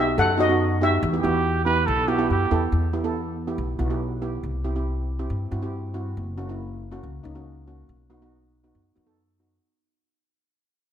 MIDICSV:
0, 0, Header, 1, 5, 480
1, 0, Start_track
1, 0, Key_signature, 1, "minor"
1, 0, Tempo, 428878
1, 1146, Time_signature, 4, 2, 24, 8
1, 12224, End_track
2, 0, Start_track
2, 0, Title_t, "Steel pan"
2, 0, Program_c, 0, 114
2, 0, Note_on_c, 0, 67, 76
2, 0, Note_on_c, 0, 76, 99
2, 184, Note_off_c, 0, 67, 0
2, 190, Note_off_c, 0, 76, 0
2, 202, Note_on_c, 0, 69, 89
2, 214, Note_on_c, 0, 78, 114
2, 419, Note_off_c, 0, 69, 0
2, 426, Note_off_c, 0, 78, 0
2, 439, Note_on_c, 0, 66, 85
2, 452, Note_on_c, 0, 75, 107
2, 879, Note_off_c, 0, 66, 0
2, 886, Note_off_c, 0, 75, 0
2, 915, Note_on_c, 0, 67, 71
2, 931, Note_on_c, 0, 76, 91
2, 2537, Note_off_c, 0, 67, 0
2, 2546, Note_off_c, 0, 76, 0
2, 12224, End_track
3, 0, Start_track
3, 0, Title_t, "Trumpet"
3, 0, Program_c, 1, 56
3, 1358, Note_on_c, 1, 67, 94
3, 1814, Note_off_c, 1, 67, 0
3, 1846, Note_on_c, 1, 71, 107
3, 2089, Note_on_c, 1, 69, 100
3, 2105, Note_off_c, 1, 71, 0
3, 2333, Note_on_c, 1, 67, 89
3, 2349, Note_off_c, 1, 69, 0
3, 2561, Note_off_c, 1, 67, 0
3, 2568, Note_on_c, 1, 67, 85
3, 3018, Note_off_c, 1, 67, 0
3, 12224, End_track
4, 0, Start_track
4, 0, Title_t, "Steel pan"
4, 0, Program_c, 2, 114
4, 0, Note_on_c, 2, 59, 76
4, 0, Note_on_c, 2, 63, 71
4, 0, Note_on_c, 2, 66, 83
4, 237, Note_off_c, 2, 59, 0
4, 237, Note_off_c, 2, 66, 0
4, 239, Note_off_c, 2, 63, 0
4, 416, Note_on_c, 2, 59, 75
4, 418, Note_on_c, 2, 63, 70
4, 422, Note_on_c, 2, 66, 88
4, 497, Note_off_c, 2, 59, 0
4, 498, Note_off_c, 2, 63, 0
4, 500, Note_off_c, 2, 66, 0
4, 548, Note_on_c, 2, 59, 74
4, 552, Note_on_c, 2, 63, 69
4, 555, Note_on_c, 2, 66, 86
4, 764, Note_off_c, 2, 59, 0
4, 766, Note_off_c, 2, 63, 0
4, 768, Note_off_c, 2, 66, 0
4, 910, Note_on_c, 2, 66, 81
4, 912, Note_on_c, 2, 59, 69
4, 912, Note_on_c, 2, 63, 68
4, 1124, Note_off_c, 2, 66, 0
4, 1125, Note_off_c, 2, 59, 0
4, 1125, Note_off_c, 2, 63, 0
4, 1268, Note_on_c, 2, 64, 67
4, 1270, Note_on_c, 2, 59, 75
4, 1272, Note_on_c, 2, 67, 83
4, 1338, Note_off_c, 2, 64, 0
4, 1339, Note_off_c, 2, 59, 0
4, 1340, Note_off_c, 2, 67, 0
4, 1380, Note_on_c, 2, 64, 69
4, 1382, Note_on_c, 2, 59, 80
4, 1387, Note_on_c, 2, 66, 92
4, 1670, Note_off_c, 2, 64, 0
4, 1671, Note_off_c, 2, 59, 0
4, 1673, Note_off_c, 2, 66, 0
4, 1860, Note_on_c, 2, 64, 73
4, 1861, Note_on_c, 2, 67, 92
4, 1862, Note_on_c, 2, 59, 85
4, 2149, Note_off_c, 2, 64, 0
4, 2149, Note_off_c, 2, 67, 0
4, 2150, Note_off_c, 2, 59, 0
4, 2327, Note_on_c, 2, 66, 88
4, 2328, Note_on_c, 2, 59, 87
4, 2328, Note_on_c, 2, 64, 81
4, 2407, Note_off_c, 2, 59, 0
4, 2407, Note_off_c, 2, 64, 0
4, 2407, Note_off_c, 2, 66, 0
4, 2443, Note_on_c, 2, 67, 95
4, 2446, Note_on_c, 2, 59, 87
4, 2449, Note_on_c, 2, 64, 82
4, 2667, Note_off_c, 2, 67, 0
4, 2669, Note_off_c, 2, 59, 0
4, 2670, Note_off_c, 2, 64, 0
4, 2810, Note_on_c, 2, 59, 87
4, 2810, Note_on_c, 2, 64, 78
4, 2818, Note_on_c, 2, 69, 93
4, 3029, Note_off_c, 2, 64, 0
4, 3030, Note_off_c, 2, 59, 0
4, 3034, Note_off_c, 2, 69, 0
4, 3283, Note_on_c, 2, 59, 85
4, 3285, Note_on_c, 2, 67, 84
4, 3287, Note_on_c, 2, 64, 77
4, 3363, Note_off_c, 2, 59, 0
4, 3364, Note_off_c, 2, 67, 0
4, 3365, Note_off_c, 2, 64, 0
4, 3404, Note_on_c, 2, 59, 78
4, 3406, Note_on_c, 2, 64, 73
4, 3408, Note_on_c, 2, 69, 87
4, 3698, Note_off_c, 2, 59, 0
4, 3699, Note_off_c, 2, 64, 0
4, 3700, Note_off_c, 2, 69, 0
4, 3889, Note_on_c, 2, 59, 73
4, 3889, Note_on_c, 2, 64, 75
4, 3894, Note_on_c, 2, 67, 84
4, 4108, Note_off_c, 2, 59, 0
4, 4109, Note_off_c, 2, 64, 0
4, 4111, Note_off_c, 2, 67, 0
4, 4238, Note_on_c, 2, 59, 78
4, 4241, Note_on_c, 2, 64, 67
4, 4241, Note_on_c, 2, 66, 84
4, 4320, Note_off_c, 2, 59, 0
4, 4322, Note_off_c, 2, 64, 0
4, 4322, Note_off_c, 2, 66, 0
4, 4367, Note_on_c, 2, 67, 82
4, 4370, Note_on_c, 2, 59, 80
4, 4371, Note_on_c, 2, 64, 75
4, 4588, Note_off_c, 2, 67, 0
4, 4589, Note_off_c, 2, 59, 0
4, 4590, Note_off_c, 2, 64, 0
4, 4719, Note_on_c, 2, 64, 66
4, 4723, Note_on_c, 2, 67, 85
4, 4724, Note_on_c, 2, 59, 78
4, 4967, Note_off_c, 2, 64, 0
4, 4969, Note_off_c, 2, 59, 0
4, 4969, Note_off_c, 2, 67, 0
4, 5198, Note_on_c, 2, 67, 84
4, 5199, Note_on_c, 2, 60, 80
4, 5205, Note_on_c, 2, 64, 74
4, 5280, Note_off_c, 2, 67, 0
4, 5281, Note_off_c, 2, 60, 0
4, 5284, Note_off_c, 2, 64, 0
4, 5324, Note_on_c, 2, 64, 72
4, 5324, Note_on_c, 2, 67, 83
4, 5327, Note_on_c, 2, 60, 80
4, 5618, Note_off_c, 2, 64, 0
4, 5618, Note_off_c, 2, 67, 0
4, 5620, Note_off_c, 2, 60, 0
4, 5810, Note_on_c, 2, 60, 75
4, 5811, Note_on_c, 2, 64, 69
4, 5814, Note_on_c, 2, 67, 86
4, 6030, Note_off_c, 2, 60, 0
4, 6031, Note_off_c, 2, 64, 0
4, 6032, Note_off_c, 2, 67, 0
4, 6171, Note_on_c, 2, 60, 75
4, 6173, Note_on_c, 2, 66, 82
4, 6176, Note_on_c, 2, 64, 74
4, 6248, Note_off_c, 2, 60, 0
4, 6249, Note_off_c, 2, 66, 0
4, 6250, Note_off_c, 2, 64, 0
4, 6291, Note_on_c, 2, 60, 77
4, 6296, Note_on_c, 2, 64, 67
4, 6298, Note_on_c, 2, 67, 85
4, 6511, Note_off_c, 2, 60, 0
4, 6514, Note_off_c, 2, 64, 0
4, 6515, Note_off_c, 2, 67, 0
4, 6650, Note_on_c, 2, 60, 77
4, 6650, Note_on_c, 2, 64, 68
4, 6651, Note_on_c, 2, 66, 88
4, 6894, Note_off_c, 2, 60, 0
4, 6894, Note_off_c, 2, 64, 0
4, 6895, Note_off_c, 2, 66, 0
4, 7134, Note_on_c, 2, 61, 75
4, 7136, Note_on_c, 2, 66, 89
4, 7141, Note_on_c, 2, 58, 76
4, 7210, Note_off_c, 2, 61, 0
4, 7211, Note_off_c, 2, 66, 0
4, 7213, Note_off_c, 2, 58, 0
4, 7264, Note_on_c, 2, 58, 75
4, 7268, Note_on_c, 2, 61, 64
4, 7269, Note_on_c, 2, 64, 79
4, 7550, Note_off_c, 2, 58, 0
4, 7552, Note_off_c, 2, 61, 0
4, 7553, Note_off_c, 2, 64, 0
4, 7739, Note_on_c, 2, 58, 78
4, 7742, Note_on_c, 2, 61, 68
4, 7748, Note_on_c, 2, 66, 88
4, 7957, Note_off_c, 2, 58, 0
4, 7959, Note_off_c, 2, 61, 0
4, 7961, Note_off_c, 2, 66, 0
4, 8095, Note_on_c, 2, 58, 78
4, 8102, Note_on_c, 2, 61, 67
4, 8103, Note_on_c, 2, 63, 85
4, 8172, Note_off_c, 2, 58, 0
4, 8176, Note_off_c, 2, 61, 0
4, 8176, Note_off_c, 2, 63, 0
4, 8224, Note_on_c, 2, 61, 67
4, 8230, Note_on_c, 2, 58, 69
4, 8232, Note_on_c, 2, 66, 79
4, 8440, Note_off_c, 2, 61, 0
4, 8443, Note_off_c, 2, 58, 0
4, 8444, Note_off_c, 2, 66, 0
4, 8589, Note_on_c, 2, 66, 80
4, 8590, Note_on_c, 2, 58, 67
4, 8591, Note_on_c, 2, 61, 64
4, 8827, Note_off_c, 2, 58, 0
4, 8827, Note_off_c, 2, 61, 0
4, 8827, Note_off_c, 2, 66, 0
4, 9064, Note_on_c, 2, 59, 79
4, 9064, Note_on_c, 2, 63, 70
4, 9069, Note_on_c, 2, 66, 81
4, 9138, Note_off_c, 2, 59, 0
4, 9138, Note_off_c, 2, 63, 0
4, 9140, Note_off_c, 2, 66, 0
4, 9199, Note_on_c, 2, 59, 72
4, 9200, Note_on_c, 2, 63, 64
4, 9202, Note_on_c, 2, 66, 78
4, 9481, Note_off_c, 2, 59, 0
4, 9482, Note_off_c, 2, 63, 0
4, 9483, Note_off_c, 2, 66, 0
4, 9667, Note_on_c, 2, 59, 76
4, 9669, Note_on_c, 2, 66, 77
4, 9670, Note_on_c, 2, 63, 67
4, 9885, Note_off_c, 2, 59, 0
4, 9885, Note_off_c, 2, 66, 0
4, 9886, Note_off_c, 2, 63, 0
4, 10021, Note_on_c, 2, 59, 71
4, 10026, Note_on_c, 2, 66, 73
4, 10028, Note_on_c, 2, 63, 59
4, 10098, Note_off_c, 2, 59, 0
4, 10101, Note_off_c, 2, 66, 0
4, 10102, Note_off_c, 2, 63, 0
4, 10144, Note_on_c, 2, 59, 70
4, 10146, Note_on_c, 2, 63, 62
4, 10146, Note_on_c, 2, 69, 77
4, 10364, Note_off_c, 2, 59, 0
4, 10365, Note_off_c, 2, 63, 0
4, 10365, Note_off_c, 2, 69, 0
4, 10517, Note_on_c, 2, 66, 76
4, 10519, Note_on_c, 2, 59, 67
4, 10521, Note_on_c, 2, 63, 63
4, 10754, Note_off_c, 2, 66, 0
4, 10755, Note_off_c, 2, 59, 0
4, 10756, Note_off_c, 2, 63, 0
4, 12224, End_track
5, 0, Start_track
5, 0, Title_t, "Upright bass"
5, 0, Program_c, 3, 32
5, 0, Note_on_c, 3, 35, 84
5, 154, Note_off_c, 3, 35, 0
5, 200, Note_on_c, 3, 42, 95
5, 1105, Note_off_c, 3, 42, 0
5, 1149, Note_on_c, 3, 40, 99
5, 1373, Note_off_c, 3, 40, 0
5, 1392, Note_on_c, 3, 40, 93
5, 2066, Note_off_c, 3, 40, 0
5, 2102, Note_on_c, 3, 35, 93
5, 2554, Note_off_c, 3, 35, 0
5, 2578, Note_on_c, 3, 42, 76
5, 2793, Note_off_c, 3, 42, 0
5, 2810, Note_on_c, 3, 40, 79
5, 3029, Note_off_c, 3, 40, 0
5, 3046, Note_on_c, 3, 40, 85
5, 3965, Note_off_c, 3, 40, 0
5, 4007, Note_on_c, 3, 35, 85
5, 4238, Note_off_c, 3, 35, 0
5, 4243, Note_on_c, 3, 35, 92
5, 4930, Note_off_c, 3, 35, 0
5, 4962, Note_on_c, 3, 36, 81
5, 5885, Note_off_c, 3, 36, 0
5, 5931, Note_on_c, 3, 43, 89
5, 6161, Note_off_c, 3, 43, 0
5, 6174, Note_on_c, 3, 43, 87
5, 6858, Note_off_c, 3, 43, 0
5, 6906, Note_on_c, 3, 30, 89
5, 7819, Note_off_c, 3, 30, 0
5, 7873, Note_on_c, 3, 37, 85
5, 8095, Note_off_c, 3, 37, 0
5, 8115, Note_on_c, 3, 37, 89
5, 8792, Note_off_c, 3, 37, 0
5, 8830, Note_on_c, 3, 35, 82
5, 9745, Note_off_c, 3, 35, 0
5, 9791, Note_on_c, 3, 42, 85
5, 10017, Note_off_c, 3, 42, 0
5, 10034, Note_on_c, 3, 42, 85
5, 10715, Note_off_c, 3, 42, 0
5, 12224, End_track
0, 0, End_of_file